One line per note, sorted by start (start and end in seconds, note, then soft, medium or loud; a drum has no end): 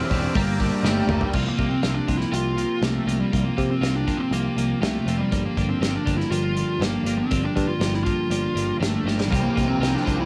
0.00 0.34 E3 medium
0.00 0.12 C4 medium
0.00 0.11 D4 medium
0.00 0.35 E4 medium
0.00 0.10 G4 medium
0.00 0.34 G4 medium
0.00 0.34 C5 medium
0.00 1.32 G5 medium
0.00 0.31 D6 medium
0.00 0.35 F6 loud
0.10 0.28 E1 medium
0.10 0.35 C4 medium
0.10 0.34 D4 medium
0.10 0.34 G4 medium
0.10 kick medium
0.10 open hi-hat medium
0.33 0.70 G1 loud
0.33 0.83 G3 loud
0.33 0.61 A#3 loud
0.33 0.60 D4 loud
0.33 0.58 G4 loud
0.33 1.32 D5 medium
0.33 1.32 A#5 medium
0.33 1.32 D6 medium
0.33 1.29 G6 loud
0.33 kick loud
0.33 open hi-hat medium
0.59 0.84 A#3 medium
0.59 0.85 D4 medium
0.59 0.85 G4 medium
0.59 kick medium
0.59 open hi-hat medium
0.83 1.01 G1 medium
0.83 1.32 G3 medium
0.83 1.23 A3 medium
0.83 1.33 A#3 medium
0.83 1.33 D4 medium
0.83 1.33 G4 loud
0.83 snare medium
1.07 1.25 G1 medium
1.07 1.34 A#3 medium
1.07 mid tom loud
1.21 1.47 G3 medium
1.21 floor tom medium
1.33 1.49 C2 medium
1.33 1.56 C3 medium
1.33 1.57 F3 medium
1.33 1.58 A#3 medium
1.33 1.57 F4 medium
1.33 1.58 G4 medium
1.33 kick loud
1.33 crash medium
1.46 1.70 A#3 medium
1.57 1.74 C2 medium
1.57 1.82 C3 medium
1.57 1.82 F3 medium
1.57 1.82 A#3 medium
1.57 1.82 F4 medium
1.57 1.83 G4 medium
1.57 kick medium
1.57 closed hi-hat medium
1.70 1.96 C4 medium
1.82 1.99 C2 medium
1.82 2.07 C3 medium
1.82 2.07 F3 medium
1.82 2.07 A#3 medium
1.82 2.08 F4 medium
1.82 2.08 G4 loud
1.82 snare medium
1.82 closed hi-hat medium
1.94 2.18 D4 medium
2.07 2.24 C2 medium
2.07 2.30 C3 medium
2.07 2.31 F3 medium
2.07 2.32 A#3 medium
2.07 2.32 F4 medium
2.07 2.31 G4 medium
2.07 kick medium
2.07 closed hi-hat medium
2.18 2.34 E4 medium
2.18 snare soft
2.31 2.64 C2 medium
2.31 2.56 C3 medium
2.31 2.57 F3 medium
2.31 2.57 A#3 loud
2.31 2.57 F4 loud
2.31 2.85 F4 loud
2.31 2.57 G4 loud
2.31 closed hi-hat medium
2.57 2.81 C3 medium
2.57 2.82 F3 medium
2.57 2.82 A#3 medium
2.57 2.82 F4 medium
2.57 2.83 G4 medium
2.57 closed hi-hat medium
2.82 2.98 C2 medium
2.82 3.05 C3 medium
2.82 3.07 F3 medium
2.82 3.18 A3 medium
2.82 3.07 A#3 medium
2.82 3.07 F4 medium
2.82 3.07 G4 medium
2.82 snare medium
2.82 closed hi-hat medium
3.06 3.22 C2 medium
3.06 3.30 C3 medium
3.06 3.32 F3 medium
3.06 3.32 A#3 medium
3.06 3.32 F4 medium
3.06 3.33 G4 medium
3.06 closed hi-hat medium
3.20 3.43 G3 medium
3.32 3.49 C2 medium
3.32 3.55 C3 medium
3.32 3.56 F3 medium
3.32 3.56 A#3 medium
3.32 3.57 F4 medium
3.32 3.57 G4 medium
3.32 kick loud
3.32 closed hi-hat medium
3.44 3.70 A#3 medium
3.56 3.79 C3 medium
3.56 3.73 C3 medium
3.56 3.81 F3 medium
3.56 3.81 A#3 medium
3.56 3.81 F4 medium
3.56 3.81 G4 medium
3.56 kick medium
3.56 closed hi-hat medium
3.71 3.94 C4 medium
3.81 4.13 C2 medium
3.81 4.05 C3 medium
3.81 4.07 F3 medium
3.81 4.07 A#3 medium
3.81 4.07 F4 loud
3.81 4.07 G4 loud
3.81 snare medium
3.81 closed hi-hat medium
3.96 4.21 D4 medium
4.06 4.31 C3 medium
4.06 4.33 F3 medium
4.06 4.32 A#3 medium
4.06 4.33 F4 medium
4.06 4.33 G4 medium
4.06 kick medium
4.06 closed hi-hat medium
4.18 4.33 C4 medium
4.31 4.47 C2 medium
4.31 4.56 C3 medium
4.31 4.57 F3 loud
4.31 4.81 A#3 medium
4.31 4.58 A#3 medium
4.31 4.57 F4 loud
4.31 4.58 G4 loud
4.31 closed hi-hat medium
4.56 4.72 C2 medium
4.56 4.79 C3 medium
4.56 4.81 F3 medium
4.56 4.82 A#3 medium
4.56 4.82 F4 medium
4.56 4.81 G4 medium
4.56 closed hi-hat medium
4.81 4.98 C2 medium
4.81 5.05 C3 medium
4.81 5.06 F3 medium
4.81 5.20 A3 medium
4.81 5.07 A#3 medium
4.81 5.08 F4 medium
4.81 5.08 G4 medium
4.81 snare loud
4.81 closed hi-hat medium
5.06 5.22 F1 medium
5.06 5.30 C3 medium
5.06 5.31 F3 medium
5.06 5.31 A#3 medium
5.06 5.32 F4 medium
5.06 5.32 G4 medium
5.06 closed hi-hat medium
5.18 5.42 G3 medium
5.30 5.48 G1 medium
5.30 5.56 G2 medium
5.30 5.55 D3 medium
5.30 5.57 F3 medium
5.30 5.57 A#3 medium
5.30 5.58 D4 medium
5.30 5.58 G4 loud
5.30 kick loud
5.30 closed hi-hat medium
5.46 5.70 A#3 medium
5.57 5.73 G1 medium
5.57 5.80 G2 medium
5.57 5.80 D3 medium
5.57 5.81 F3 medium
5.57 5.81 A#3 medium
5.57 5.81 D4 medium
5.57 5.81 G4 medium
5.57 kick medium
5.57 closed hi-hat medium
5.70 5.95 C4 medium
5.81 5.97 G1 medium
5.81 6.04 G2 medium
5.81 6.04 D3 medium
5.81 6.05 F3 medium
5.81 6.05 A#3 loud
5.81 6.06 D4 loud
5.81 6.06 G4 medium
5.81 snare medium
5.81 closed hi-hat medium
5.95 6.17 D4 medium
6.05 6.23 G1 medium
6.05 6.29 G2 medium
6.05 6.29 D3 medium
6.05 6.31 F3 medium
6.05 6.31 A#3 medium
6.05 6.30 D4 medium
6.05 6.31 G4 medium
6.05 kick medium
6.05 closed hi-hat medium
6.17 6.31 E4 medium
6.17 snare soft
6.30 6.62 G1 medium
6.30 6.55 G2 loud
6.30 6.55 D3 medium
6.30 6.56 F3 loud
6.30 6.56 A#3 medium
6.30 6.56 D4 loud
6.30 6.83 F4 loud
6.30 6.57 G4 medium
6.30 closed hi-hat medium
6.56 6.79 G2 medium
6.56 6.79 D3 medium
6.56 6.81 F3 medium
6.56 6.80 A#3 medium
6.56 6.80 D4 medium
6.56 6.81 G4 medium
6.56 closed hi-hat medium
6.80 6.96 G1 medium
6.80 7.04 G2 medium
6.80 7.05 D3 medium
6.80 7.06 F3 medium
6.80 7.06 A#3 medium
6.80 7.18 A#3 medium
6.80 7.05 D4 medium
6.80 7.06 G4 medium
6.80 snare loud
6.80 closed hi-hat medium
7.04 7.20 G1 medium
7.04 7.29 G2 medium
7.04 7.29 D3 medium
7.04 7.30 F3 medium
7.04 7.30 A#3 medium
7.04 7.30 D4 medium
7.04 7.31 G4 medium
7.04 closed hi-hat medium
7.18 7.44 C4 medium
7.30 7.48 G1 medium
7.30 7.53 G2 medium
7.30 7.54 D3 medium
7.30 7.55 F3 loud
7.30 7.55 A#3 medium
7.30 7.55 D4 medium
7.30 7.56 G4 medium
7.30 kick loud
7.30 closed hi-hat medium
7.43 7.68 D4 medium
7.54 7.78 G2 medium
7.54 7.72 G2 medium
7.54 7.79 D3 medium
7.54 7.81 F3 medium
7.54 7.81 A#3 medium
7.54 7.80 D4 medium
7.54 7.81 G4 medium
7.54 kick medium
7.54 closed hi-hat medium
7.68 7.94 F4 medium
7.80 8.12 G1 medium
7.80 8.03 G2 medium
7.80 8.04 D3 medium
7.80 8.05 F3 medium
7.80 8.05 A#3 medium
7.80 8.04 D4 loud
7.80 8.06 G4 medium
7.80 snare loud
7.80 closed hi-hat medium
7.94 8.03 E4 medium
7.94 snare soft
8.04 8.29 G2 medium
8.04 8.30 D3 medium
8.04 8.31 F3 medium
8.04 8.31 A#3 medium
8.04 8.30 D4 medium
8.04 8.76 F4 medium
8.04 8.31 G4 medium
8.04 kick medium
8.04 closed hi-hat medium
8.30 8.46 G1 medium
8.30 8.54 G2 loud
8.30 8.54 D3 loud
8.30 8.55 F3 medium
8.30 8.55 A#3 loud
8.30 8.55 D4 loud
8.30 8.56 G4 loud
8.30 closed hi-hat medium
8.55 8.71 G1 medium
8.55 8.78 G2 medium
8.55 8.78 D3 medium
8.55 8.80 F3 medium
8.55 8.80 A#3 medium
8.55 8.79 D4 medium
8.55 8.80 G4 medium
8.55 closed hi-hat medium
8.79 8.96 G1 medium
8.79 9.04 G2 medium
8.79 9.04 D3 medium
8.79 9.06 F3 medium
8.79 9.20 A3 medium
8.79 9.06 A#3 medium
8.79 9.06 D4 medium
8.79 9.07 G4 medium
8.79 snare medium
8.79 closed hi-hat medium
9.04 9.32 G1 medium
9.04 9.29 G2 medium
9.04 9.29 D3 medium
9.04 9.30 F3 medium
9.04 9.31 A#3 medium
9.04 9.30 D4 medium
9.04 9.31 G4 medium
9.04 snare medium
9.19 9.42 G3 medium
9.19 snare medium
9.30 9.47 C2 medium
9.30 9.55 C3 medium
9.30 9.56 E3 medium
9.30 9.55 F3 medium
9.30 9.56 A#3 medium
9.30 9.58 C4 medium
9.30 9.55 F4 medium
9.30 9.56 G4 loud
9.30 kick loud
9.30 closed hi-hat medium
9.43 9.69 A#3 medium
9.55 9.73 C2 medium
9.55 9.80 C3 medium
9.55 9.80 E3 medium
9.55 9.80 F3 medium
9.55 9.80 A#3 medium
9.55 9.82 C4 medium
9.55 9.80 F4 medium
9.55 9.81 G4 medium
9.55 kick medium
9.55 closed hi-hat medium
9.69 9.94 C4 medium
9.78 9.95 C2 medium
9.78 10.04 C3 medium
9.78 10.03 E3 medium
9.78 10.05 F3 medium
9.78 10.04 A#3 medium
9.78 10.06 C4 medium
9.78 10.05 F4 loud
9.78 10.06 G4 loud
9.83 snare medium
9.83 closed hi-hat medium
9.94 10.19 D4 medium
9.94 snare soft
10.05 10.22 C2 medium
10.05 10.25 C3 medium
10.05 10.25 E3 medium
10.05 10.25 F3 medium
10.05 10.25 A#3 medium
10.05 10.25 C4 medium
10.05 10.25 F4 medium
10.05 10.25 G4 medium
10.05 kick medium
10.05 closed hi-hat medium
10.20 10.25 E4 medium